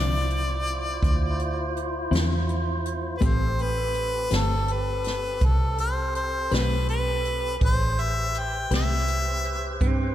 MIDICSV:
0, 0, Header, 1, 7, 480
1, 0, Start_track
1, 0, Key_signature, 0, "minor"
1, 0, Tempo, 731707
1, 2110, Time_signature, 12, 3, 24, 8
1, 6656, End_track
2, 0, Start_track
2, 0, Title_t, "Harmonica"
2, 0, Program_c, 0, 22
2, 0, Note_on_c, 0, 74, 90
2, 1126, Note_off_c, 0, 74, 0
2, 2084, Note_on_c, 0, 71, 54
2, 2135, Note_on_c, 0, 72, 80
2, 2145, Note_off_c, 0, 71, 0
2, 2375, Note_on_c, 0, 71, 90
2, 2385, Note_off_c, 0, 72, 0
2, 2858, Note_on_c, 0, 69, 77
2, 2868, Note_off_c, 0, 71, 0
2, 3097, Note_on_c, 0, 71, 73
2, 3107, Note_off_c, 0, 69, 0
2, 3577, Note_on_c, 0, 69, 84
2, 3586, Note_off_c, 0, 71, 0
2, 3804, Note_off_c, 0, 69, 0
2, 3807, Note_on_c, 0, 72, 79
2, 4023, Note_off_c, 0, 72, 0
2, 4036, Note_on_c, 0, 72, 82
2, 4291, Note_on_c, 0, 71, 81
2, 4301, Note_off_c, 0, 72, 0
2, 4521, Note_off_c, 0, 71, 0
2, 4524, Note_on_c, 0, 71, 88
2, 4971, Note_off_c, 0, 71, 0
2, 5013, Note_on_c, 0, 72, 96
2, 5251, Note_on_c, 0, 76, 92
2, 5261, Note_off_c, 0, 72, 0
2, 5501, Note_on_c, 0, 79, 93
2, 5511, Note_off_c, 0, 76, 0
2, 5726, Note_off_c, 0, 79, 0
2, 5740, Note_on_c, 0, 76, 82
2, 6418, Note_off_c, 0, 76, 0
2, 6656, End_track
3, 0, Start_track
3, 0, Title_t, "Tonewheel organ"
3, 0, Program_c, 1, 16
3, 0, Note_on_c, 1, 64, 66
3, 0, Note_on_c, 1, 65, 60
3, 0, Note_on_c, 1, 72, 59
3, 2080, Note_off_c, 1, 64, 0
3, 2083, Note_off_c, 1, 65, 0
3, 2083, Note_off_c, 1, 72, 0
3, 2110, Note_on_c, 1, 60, 63
3, 2112, Note_on_c, 1, 69, 66
3, 2114, Note_on_c, 1, 67, 65
3, 4964, Note_off_c, 1, 60, 0
3, 4965, Note_off_c, 1, 69, 0
3, 4967, Note_off_c, 1, 67, 0
3, 4983, Note_on_c, 1, 72, 60
3, 4985, Note_on_c, 1, 68, 54
3, 4987, Note_on_c, 1, 61, 61
3, 5226, Note_on_c, 1, 71, 56
3, 5227, Note_off_c, 1, 72, 0
3, 5228, Note_off_c, 1, 68, 0
3, 5229, Note_off_c, 1, 61, 0
3, 5233, Note_on_c, 1, 67, 52
3, 5236, Note_on_c, 1, 72, 57
3, 6656, Note_off_c, 1, 67, 0
3, 6656, Note_off_c, 1, 71, 0
3, 6656, Note_off_c, 1, 72, 0
3, 6656, End_track
4, 0, Start_track
4, 0, Title_t, "Clean electric guitar"
4, 0, Program_c, 2, 27
4, 0, Note_on_c, 2, 50, 54
4, 0, Note_on_c, 2, 53, 59
4, 0, Note_on_c, 2, 60, 61
4, 0, Note_on_c, 2, 64, 58
4, 86, Note_off_c, 2, 64, 0
4, 90, Note_off_c, 2, 60, 0
4, 92, Note_off_c, 2, 53, 0
4, 95, Note_off_c, 2, 50, 0
4, 1386, Note_on_c, 2, 64, 70
4, 1391, Note_on_c, 2, 60, 72
4, 1394, Note_on_c, 2, 53, 59
4, 1399, Note_on_c, 2, 50, 58
4, 1532, Note_off_c, 2, 64, 0
4, 1534, Note_off_c, 2, 60, 0
4, 1536, Note_off_c, 2, 53, 0
4, 1538, Note_off_c, 2, 50, 0
4, 2104, Note_on_c, 2, 57, 62
4, 2108, Note_on_c, 2, 60, 66
4, 2114, Note_on_c, 2, 67, 67
4, 2118, Note_on_c, 2, 71, 66
4, 2251, Note_off_c, 2, 57, 0
4, 2253, Note_off_c, 2, 60, 0
4, 2256, Note_off_c, 2, 67, 0
4, 2258, Note_off_c, 2, 71, 0
4, 2827, Note_on_c, 2, 71, 57
4, 2833, Note_on_c, 2, 67, 49
4, 2837, Note_on_c, 2, 60, 52
4, 2838, Note_on_c, 2, 57, 50
4, 2973, Note_off_c, 2, 71, 0
4, 2976, Note_off_c, 2, 67, 0
4, 2978, Note_off_c, 2, 60, 0
4, 2979, Note_off_c, 2, 57, 0
4, 4274, Note_on_c, 2, 71, 64
4, 4281, Note_on_c, 2, 67, 60
4, 4286, Note_on_c, 2, 60, 60
4, 4290, Note_on_c, 2, 57, 55
4, 4417, Note_off_c, 2, 71, 0
4, 4420, Note_off_c, 2, 67, 0
4, 4422, Note_off_c, 2, 60, 0
4, 4425, Note_off_c, 2, 57, 0
4, 5715, Note_on_c, 2, 71, 65
4, 5722, Note_on_c, 2, 67, 57
4, 5726, Note_on_c, 2, 60, 54
4, 5733, Note_on_c, 2, 57, 45
4, 5856, Note_off_c, 2, 71, 0
4, 5860, Note_off_c, 2, 67, 0
4, 5862, Note_off_c, 2, 60, 0
4, 5865, Note_off_c, 2, 57, 0
4, 6656, End_track
5, 0, Start_track
5, 0, Title_t, "Clean electric guitar"
5, 0, Program_c, 3, 27
5, 6437, Note_on_c, 3, 60, 80
5, 6656, Note_off_c, 3, 60, 0
5, 6656, End_track
6, 0, Start_track
6, 0, Title_t, "Fingered electric bass"
6, 0, Program_c, 4, 33
6, 0, Note_on_c, 4, 36, 77
6, 645, Note_off_c, 4, 36, 0
6, 673, Note_on_c, 4, 38, 66
6, 1370, Note_off_c, 4, 38, 0
6, 1387, Note_on_c, 4, 40, 82
6, 2087, Note_off_c, 4, 40, 0
6, 2111, Note_on_c, 4, 33, 77
6, 2810, Note_off_c, 4, 33, 0
6, 2832, Note_on_c, 4, 31, 76
6, 3530, Note_off_c, 4, 31, 0
6, 3554, Note_on_c, 4, 36, 73
6, 4251, Note_off_c, 4, 36, 0
6, 4279, Note_on_c, 4, 35, 87
6, 4974, Note_off_c, 4, 35, 0
6, 4995, Note_on_c, 4, 33, 79
6, 5691, Note_off_c, 4, 33, 0
6, 5712, Note_on_c, 4, 36, 77
6, 6409, Note_off_c, 4, 36, 0
6, 6437, Note_on_c, 4, 43, 68
6, 6656, Note_off_c, 4, 43, 0
6, 6656, End_track
7, 0, Start_track
7, 0, Title_t, "Drums"
7, 199, Note_on_c, 9, 42, 53
7, 264, Note_off_c, 9, 42, 0
7, 437, Note_on_c, 9, 42, 54
7, 503, Note_off_c, 9, 42, 0
7, 673, Note_on_c, 9, 36, 87
7, 679, Note_on_c, 9, 42, 68
7, 738, Note_off_c, 9, 36, 0
7, 744, Note_off_c, 9, 42, 0
7, 914, Note_on_c, 9, 42, 52
7, 980, Note_off_c, 9, 42, 0
7, 1157, Note_on_c, 9, 42, 52
7, 1223, Note_off_c, 9, 42, 0
7, 1394, Note_on_c, 9, 42, 64
7, 1411, Note_on_c, 9, 38, 89
7, 1459, Note_off_c, 9, 42, 0
7, 1476, Note_off_c, 9, 38, 0
7, 1632, Note_on_c, 9, 42, 47
7, 1698, Note_off_c, 9, 42, 0
7, 1873, Note_on_c, 9, 42, 54
7, 1939, Note_off_c, 9, 42, 0
7, 2109, Note_on_c, 9, 42, 72
7, 2110, Note_on_c, 9, 36, 102
7, 2175, Note_off_c, 9, 42, 0
7, 2176, Note_off_c, 9, 36, 0
7, 2352, Note_on_c, 9, 42, 47
7, 2418, Note_off_c, 9, 42, 0
7, 2586, Note_on_c, 9, 42, 51
7, 2651, Note_off_c, 9, 42, 0
7, 2826, Note_on_c, 9, 42, 78
7, 2843, Note_on_c, 9, 38, 93
7, 2891, Note_off_c, 9, 42, 0
7, 2908, Note_off_c, 9, 38, 0
7, 3070, Note_on_c, 9, 42, 51
7, 3135, Note_off_c, 9, 42, 0
7, 3307, Note_on_c, 9, 42, 55
7, 3324, Note_on_c, 9, 38, 28
7, 3373, Note_off_c, 9, 42, 0
7, 3390, Note_off_c, 9, 38, 0
7, 3550, Note_on_c, 9, 42, 65
7, 3551, Note_on_c, 9, 36, 92
7, 3616, Note_off_c, 9, 42, 0
7, 3617, Note_off_c, 9, 36, 0
7, 3793, Note_on_c, 9, 42, 58
7, 3858, Note_off_c, 9, 42, 0
7, 4034, Note_on_c, 9, 42, 57
7, 4100, Note_off_c, 9, 42, 0
7, 4273, Note_on_c, 9, 42, 70
7, 4290, Note_on_c, 9, 38, 97
7, 4339, Note_off_c, 9, 42, 0
7, 4356, Note_off_c, 9, 38, 0
7, 4515, Note_on_c, 9, 42, 50
7, 4581, Note_off_c, 9, 42, 0
7, 4756, Note_on_c, 9, 42, 55
7, 4822, Note_off_c, 9, 42, 0
7, 4992, Note_on_c, 9, 42, 68
7, 4994, Note_on_c, 9, 36, 100
7, 5058, Note_off_c, 9, 42, 0
7, 5060, Note_off_c, 9, 36, 0
7, 5238, Note_on_c, 9, 42, 48
7, 5303, Note_off_c, 9, 42, 0
7, 5473, Note_on_c, 9, 42, 49
7, 5539, Note_off_c, 9, 42, 0
7, 5714, Note_on_c, 9, 42, 74
7, 5732, Note_on_c, 9, 38, 94
7, 5780, Note_off_c, 9, 42, 0
7, 5797, Note_off_c, 9, 38, 0
7, 5954, Note_on_c, 9, 42, 52
7, 6020, Note_off_c, 9, 42, 0
7, 6194, Note_on_c, 9, 42, 46
7, 6259, Note_off_c, 9, 42, 0
7, 6435, Note_on_c, 9, 36, 90
7, 6436, Note_on_c, 9, 42, 63
7, 6500, Note_off_c, 9, 36, 0
7, 6502, Note_off_c, 9, 42, 0
7, 6656, End_track
0, 0, End_of_file